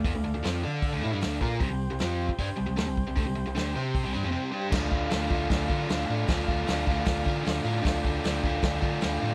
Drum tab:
CC |----------------|----------------|----------------|x---------------|
HH |o---o---o---o---|o---o---o---o---|o---o---o-------|----o---o---o---|
SD |----o-------o---|----o-------o---|----o-----------|o---o---o---o---|
BD |o-------o-----o-|o------oo-----o-|o-------o-------|o-o---o-o-o-----|

CC |----------------|----------------|
HH |o---o---o---o---|o---o---o---o---|
SD |o---o---o---o---|o---o---o---o---|
BD |o-o---o-o-o-----|o-o---o-o-o-----|